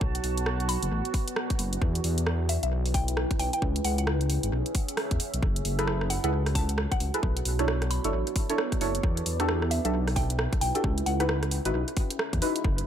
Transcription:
Already playing: F#4 A5
0.01 B1 B3, kick
0.15 closed hi-hat
0.24 B1, open hi-hat
0.38 closed hi-hat
0.46 cross-stick
0.60 closed hi-hat
0.69 B5, open hi-hat
0.82 F#1 D5, closed hi-hat
0.91 A1
1.05 closed hi-hat
1.14 kick, open hi-hat
1.28 closed hi-hat
1.36 cross-stick
1.50 kick, closed hi-hat
1.59 F#1, open hi-hat
1.73 closed hi-hat
1.81 E2 E4, kick
1.95 closed hi-hat
2.04 E2, open hi-hat
2.12 B4
2.18 closed hi-hat
2.27 cross-stick
2.49 E5, open hi-hat
2.63 B1 E5, closed hi-hat
2.86 open hi-hat
2.94 G5, kick, open hi-hat
3.08 closed hi-hat
3.17 cross-stick
3.31 kick, closed hi-hat
3.39 B1 G5, open hi-hat
3.53 G5, closed hi-hat
3.62 C#2 C#4, kick
3.76 closed hi-hat
3.85 C#2 F#5, open hi-hat
3.94 G#4
3.98 F#5, closed hi-hat
4.07 cross-stick
4.21 E5, closed hi-hat
4.30 open hi-hat
4.43 G#1, closed hi-hat
4.52 B1
4.66 closed hi-hat
4.75 kick, open hi-hat
4.88 closed hi-hat
4.97 cross-stick, open hi-hat
5.11 E2, kick, closed hi-hat
5.20 open hi-hat
5.34 B1, closed hi-hat
5.43 F#1 F#4, kick
5.56 closed hi-hat
5.65 F#1, open hi-hat
5.79 E4 G#4 A4 B4, cross-stick, closed hi-hat
5.85 C#5, cross-stick
6.01 cross-stick
6.10 F#5, open hi-hat
6.24 C#2 E4 G#4 A4 B4 F#5, closed hi-hat
6.46 cross-stick, open hi-hat
6.55 A5, kick, open hi-hat
6.69 closed hi-hat
6.78 cross-stick
6.91 F#5, kick, closed hi-hat
7.00 C#2, open hi-hat
7.14 E4 G#4 A4 B4, closed hi-hat
7.23 B1 B3, kick
7.37 closed hi-hat
7.45 B1, open hi-hat
7.59 D4 E4 A4 C#5, cross-stick, closed hi-hat
7.68 cross-stick
7.82 D5, cross-stick, closed hi-hat
7.91 B5, open hi-hat
8.04 F#1 D4 E4 A4 C#5, closed hi-hat
8.13 A1
8.27 closed hi-hat
8.36 kick, open hi-hat
8.50 D4 E4 A4 C#5, closed hi-hat
8.58 cross-stick
8.72 kick, cross-stick, closed hi-hat
8.81 F#1 D4 E4 A4 C#5, open hi-hat
8.95 closed hi-hat
9.03 E2 E4, kick
9.17 B4, closed hi-hat
9.26 E2, open hi-hat
9.40 D4 F#4 G4 A4, cross-stick, closed hi-hat
9.49 cross-stick
9.62 cross-stick
9.71 E5, open hi-hat
9.85 B1 D4 F#4 G4 A4 E5, closed hi-hat
10.08 cross-stick, open hi-hat
10.16 G5, kick, open hi-hat
10.30 closed hi-hat
10.39 cross-stick
10.53 kick, closed hi-hat
10.61 B1 G5, open hi-hat
10.75 D4 F#4 G4 A4 G5, closed hi-hat
10.84 C#2 C#4, kick
10.98 closed hi-hat
11.06 C#2 F#5, open hi-hat
11.20 D#4 E4 F#4 B4 F#5, cross-stick, closed hi-hat
11.24 E5
11.29 cross-stick
11.39 G#4, cross-stick, closed hi-hat
11.51 open hi-hat
11.65 G#1 D#4 E4 F#4 B4, closed hi-hat
11.74 B1
11.88 closed hi-hat
11.97 kick, open hi-hat
12.10 closed hi-hat
12.19 cross-stick
12.33 E2, kick, cross-stick, closed hi-hat
12.42 D#4 E4 F#4 B4, open hi-hat
12.56 closed hi-hat
12.64 F#1 F#4, kick
12.78 closed hi-hat

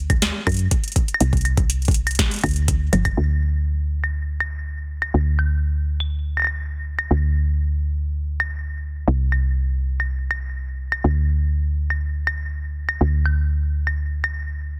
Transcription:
Already playing: D2
0.10 kick, closed hi-hat, claves
0.22 snare, closed hi-hat
0.47 F#2, kick, closed hi-hat, claves
0.49 closed hi-hat
0.52 closed hi-hat
0.54 closed hi-hat
0.57 closed hi-hat
0.59 closed hi-hat
0.71 kick, closed hi-hat
0.84 closed hi-hat
0.88 closed hi-hat
0.92 closed hi-hat
0.96 kick, closed hi-hat
1.08 closed hi-hat
1.14 claves
1.20 C2, closed hi-hat
1.33 kick, closed hi-hat
1.37 closed hi-hat
1.41 closed hi-hat
1.45 closed hi-hat, claves
1.57 kick, closed hi-hat
1.70 closed hi-hat
1.82 closed hi-hat
1.85 closed hi-hat
1.88 kick, closed hi-hat
1.91 closed hi-hat
1.94 closed hi-hat
2.07 closed hi-hat, claves
2.11 closed hi-hat
2.15 kick, closed hi-hat
2.19 snare, closed hi-hat
2.31 closed hi-hat
2.34 closed hi-hat
2.36 closed hi-hat
2.39 closed hi-hat
2.41 closed hi-hat
2.44 D2, kick, closed hi-hat, claves
2.46 closed hi-hat
2.49 closed hi-hat
2.51 closed hi-hat
2.54 closed hi-hat
2.56 closed hi-hat
2.68 kick, closed hi-hat
2.93 G1, closed hi-hat, high tom, claves
3.05 kick, closed hi-hat, claves
3.17 D2
4.04 claves
4.40 claves
5.02 claves
5.14 D2
5.39 claves
6.00 claves
6.37 claves
6.40 claves
6.42 claves
6.44 claves
6.47 claves
6.99 claves
7.11 D2
8.40 claves
9.08 C2
9.32 claves
10.00 claves
10.31 claves
10.92 claves
11.04 D2
11.90 claves
12.27 claves
12.89 claves
13.01 D2
13.26 claves
13.87 claves
14.24 claves

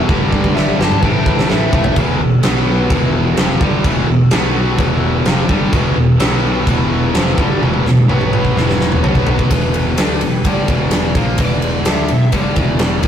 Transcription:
0.08 G1 G2 D3 G3 B3 D4 A4, kick
0.30 D5, kick
0.44 kick
0.54 G1 G2 D3 G3 E5, snare
0.78 G1 G2 D3 G3 A5, snare
0.92 mid tom
1.01 A1 A2 E3 A3 E4 B4 G5, kick
1.06 C4 E4
1.26 A1, kick
1.39 snare
1.48 A1 A2 E3 A3 E5, snare
1.73 E1 A2 E3 A3, kick
1.84 floor tom
1.96 E1 E2 B2 E3, kick, crash
2.20 E1 E2 B2
2.43 B1 B2 F#3 B3, snare, crash
2.90 E1 E2 B2 E3, kick, crash
3.37 F1 F2 C3 F3, snare, crash
3.50 snare
3.61 G1 G2 D3 G3, kick
3.84 E1 E2 B2 E3, kick, crash
4.08 E1 E2 B2
4.31 B1 B2 F#3 B3, snare, crash
4.78 E1 E2 B2 E3, kick, crash
5.25 F1 F2 C3 F3, snare, crash
5.48 G1 G2 D3 G3, kick
5.71 E1 E2 B2 E3 B3 F#4, kick, crash
5.96 E1 E2 B2
6.20 B1 B2 F#3 B3 B4, snare, crash
6.67 E1 E2 B2 E3 E4 F#5, kick, crash
7.14 F1 F2 C3 F3, snare, crash
7.27 snare
7.38 G1 G2 D3 G3, kick
7.62 E1 E2 B2 E3, high tom
7.74 high tom
7.84 E1 E2 B2, snare
7.97 high tom
8.08 B1 B2 F#3 B3 F#4 B4, mid tom
8.21 mid tom
8.33 mid tom
8.45 kick
8.55 E1 E2 B2 E3 E4 F#5, snare
8.69 snare
8.81 snare
8.92 mid tom
9.03 B1 B2 F#3 B3 F#4, floor tom
9.15 kick
9.27 floor tom
9.39 kick
9.50 E1 E2 B2 E3 B4, kick, ride
9.74 ride
9.98 D2 D3 A3 D4, snare, ride
10.21 E1 E2 B2 B4, ride
10.45 G1 G2 D3 G3 D5, kick, ride
10.68 E1 E2 B2 E3, kick, ride
10.91 snare, ride
11.15 A#1 A#2 F3 A#3, kick, ride
11.38 E1 E2 B2 E3, kick, ride
11.45 D5
11.62 ride
11.85 D2 D3 A3 D4, snare, ride
11.90 E5
12.08 E1 E2 B2, ride
12.32 G1 G2 D3 G3 D5, kick, ride
12.55 E1 E2 B2 E3, kick, ride
12.79 snare, ride
13.02 A#1 A#2 F3 A#3, kick, ride

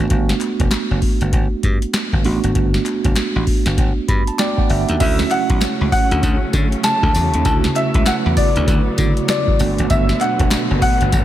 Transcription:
Already playing: A3 B3 D4 F#4
0.10 G1, kick, closed hi-hat
0.29 snare
0.41 clap, closed hi-hat
0.60 E1, kick, closed hi-hat
0.71 snare, clap, closed hi-hat
0.91 F#1
1.02 kick, open hi-hat
1.21 G1, closed hi-hat
1.33 G1, kick, closed hi-hat
1.63 G2, kick, closed hi-hat
1.82 closed hi-hat
1.94 snare, clap, closed hi-hat
2.13 G1, kick
2.23 A1 A3 B3 D4 F#4, open hi-hat
2.44 G#1, closed hi-hat
2.55 G1, kick, closed hi-hat
2.74 snare
2.86 clap, closed hi-hat
3.04 F#1, kick, closed hi-hat
3.16 snare, clap, closed hi-hat
3.36 A1
3.47 kick, open hi-hat
3.66 G1, snare, closed hi-hat
3.78 G1, kick, closed hi-hat
4.08 G2 B5, kick, closed hi-hat
4.27 A5, closed hi-hat
4.39 A3 B3 D4 F#4 D5 G5, snare, clap, closed hi-hat
4.58 F#5, kick
4.70 G1 E5, open hi-hat
4.89 D#2, closed hi-hat
4.99 D2 C#3 F#3 A3 C#4 E4 F#4 E5, kick, closed hi-hat, crash, tambourine
5.19 snare
5.31 F#5, clap, closed hi-hat
5.50 B1, kick, closed hi-hat
5.61 snare, clap, closed hi-hat, tambourine
5.81 C#2
5.92 F#5, kick, open hi-hat, tambourine
6.11 D2, closed hi-hat
6.23 D2, kick, closed hi-hat, tambourine
6.53 D3, kick, closed hi-hat, tambourine
6.72 closed hi-hat
6.84 A5, snare, clap, closed hi-hat, tambourine
7.03 D2, kick
7.14 E2, open hi-hat, tambourine
7.34 D#2, closed hi-hat
7.45 D2 C#3 A3 B3 E4 F#4 A5, kick, closed hi-hat, tambourine
7.64 snare
7.76 E5, clap, closed hi-hat
7.94 C#2, kick, closed hi-hat
8.06 F#5, snare, clap, closed hi-hat, tambourine
8.26 E2
8.37 D5, kick, open hi-hat, tambourine
8.56 D2, closed hi-hat
8.67 D2, kick, closed hi-hat, tambourine
8.98 C#3 D3 A3 E4 F#4, kick, closed hi-hat, tambourine
9.17 closed hi-hat
9.29 D5, snare, clap, closed hi-hat, tambourine
9.47 kick
9.59 G1 B2 D3 A3 B3 D4 F#4, open hi-hat, tambourine
9.78 G#1, closed hi-hat
9.90 G1 E5, kick, closed hi-hat, tambourine
10.09 snare
10.21 F#5, clap, closed hi-hat
10.39 E1, kick, closed hi-hat
10.51 snare, clap, closed hi-hat, tambourine
10.71 F#1
10.82 F#5, kick, open hi-hat, tambourine
11.01 G1, closed hi-hat
11.12 G1, kick, closed hi-hat, tambourine

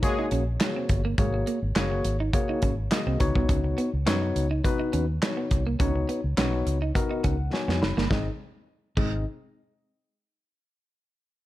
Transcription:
0.02 G#3 A#3 F#4 G#4 C#5, muted clean electric guitar stroke, kick, closed hi-hat
0.19 D#4
0.31 A#1 C#4, closed hi-hat
0.60 A#3 F#4 G#4 C#5, snare, clap, closed hi-hat
0.76 C4
0.89 G1, muted clean electric guitar stroke, kick, closed hi-hat
1.05 A#3
1.18 G#1 G#3 A#3 F#4 G#4 C#5, kick, closed hi-hat
1.34 muted clean electric guitar stroke
1.47 A#3, closed hi-hat
1.62 G#1
1.76 F#1 A#3 C#4 F#4 G#4 C#5, snare, clap, closed hi-hat
1.92 muted clean electric guitar stroke
2.05 G#1, closed hi-hat
2.20 D#4
2.33 A#3 F#4 G#4 C#5, muted clean electric guitar stroke, kick, closed hi-hat
2.49 D#4
2.62 G#1 C#4, kick, closed hi-hat
2.91 A#3 F#4 G#4 D#5, snare, clap, closed hi-hat
3.07 C2 C4
3.20 C#2 B3 D#4 F#4 C#5, muted clean electric guitar stroke, kick, closed hi-hat
3.35 C2 B3, kick
3.49 C#2 C#4, kick, closed hi-hat
3.64 muted clean electric guitar stroke
3.78 B3, closed hi-hat
3.94 C#2
4.06 F#2 B3 C#4 D#4 F#4 C#5, snare, clap, closed hi-hat
4.22 muted clean electric guitar stroke
4.36 C#2, closed hi-hat
4.51 D#4
4.64 B3 D#4 F#4 B4, muted clean electric guitar stroke, kick, closed hi-hat
4.79 D#4
4.93 D#2 C#4, closed hi-hat
5.22 B3 D#4 F#4 C#5, snare, clap, closed hi-hat
5.37 B3
5.51 C2, muted clean electric guitar stroke, kick, closed hi-hat
5.67 A#3
5.79 C#2 B3 C#4 D#4 F#4 C#5, kick, closed hi-hat
5.96 muted clean electric guitar stroke
6.09 B3, closed hi-hat
6.24 C#2
6.37 B1 B3 C#4 D#4 F#4 C#5, snare, clap, closed hi-hat
6.53 muted clean electric guitar stroke
6.66 C#2, closed hi-hat
6.82 D#4
6.95 B3 D#4 F#4 A#4, muted clean electric guitar stroke, kick, closed hi-hat
7.11 D#4
7.24 C#2 C#4 F#5, kick, closed hi-hat
7.52 B3 D#4 F#4 C#5 G#5, snare
7.68 F2 B3, snare
7.82 F#1 B5, muted clean electric guitar stroke, snare
7.97 G1 A#3, snare
8.10 G#1 G#3 C4 D#4 G#4 D#5, kick, snare
8.97 G#1 G#3 C4 D#4 G#4 D#5, kick, crash

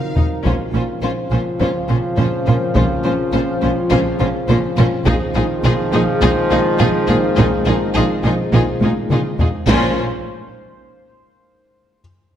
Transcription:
Already playing: D#3 F#3 A#3 C4 D#4 F4 A#4 C5 F5
0.16 A#1 A#2 D#4, taiko low
0.43 A#1 A#2 C#3 F3 C4 C#4 F4 C5 F5, taiko
0.73 A#1 A#2 C#4 F4 C5
1.02 A#1 A#2 C#4 F4 C5
1.31 A#1 A#2 C#4 F4 C5, taiko rim
1.60 A#1 A#2 C#4 F4 C5, taiko
1.89 A#1 A#2 C#4 F4 C5, taiko rim
2.17 A#1 A#2 C#4 F4 C5, taiko low-mid
2.46 A#1 A#2 C#4 F4 A#4 C5, taiko low-mid
2.75 A#1 A#2 C#4 F4 C5, taiko
3.04 A#1 A#2 C#4 F4 C5
3.32 A#1 A#2 C#4 F4 C5
3.61 A#1 A#2 C#4 F4 C5
3.90 A#1 A#2 C#4 F4 C5, taiko
4.19 A#1 A#2 C#4 F4 C5, taiko rim
4.48 A#1 A#2 C#4 F4 C5, taiko low-mid
4.77 A#1 A#2 C#4 F4 C5, taiko low-mid
5.06 A#1 A#2 D#3 F3 G#3 C4 D#4 F4 G#4 C5 F5, taiko
5.35 A#1 A#2 D#4 F4 G#4, taiko rim
5.64 A#1 A#2 D#4 F4 G#4
5.93 A#1 A#2 G#3 D#4 F4 G#4
6.21 A#1 A#2 D#4 F4 G#4, taiko
6.50 A#1 A#2 D#4 F4 G#4, taiko rim
6.79 A#1 A#2 D#4 F4 G#4, taiko low-mid
7.07 A#1 A#2 A#3 D#4 F4 G#4 A#4, taiko low-mid
7.36 A#1 A#2 D#4 F4 G#4, taiko
7.66 A#1 A#2 D#4 F4 G#4
7.94 A#1 A#2 D#4 F4 G#4
8.23 A#1 A#2 D#4 F4 G#4, taiko rim
8.52 A#1 A#2 D#4 F4 G#4, taiko
8.81 A#1 A#2 D#4 F4 G#4, taiko high
9.10 A#1 A#2 D#4 F4 G#4, taiko mid
9.39 A#1 A#2 D#4 F4 G#4, taiko low
9.67 A#1 A#2 C#3 F3 C#4 F4 A#4 C5, taiko

